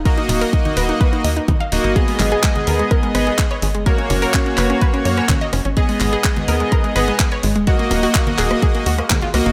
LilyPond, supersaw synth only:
\new Staff \with { instrumentName = "Supersaw synth" } { \time 4/4 \key gis \minor \tempo 4 = 126 <ais fis' dis''>2~ <ais fis' dis''>8 r4 <ais fis' dis''>8 | <b gis' dis''>2~ <b gis' dis''>8 <b gis' dis''>8 r4 | <ais fis' cis''>2~ <ais fis' cis''>8 <ais fis' cis''>8 r4 | <b gis' dis''>2~ <b gis' dis''>8 <b gis' dis''>8 r4 |
<ais fis' dis''>2~ <ais fis' dis''>8 r4 <ais fis' dis''>8 | }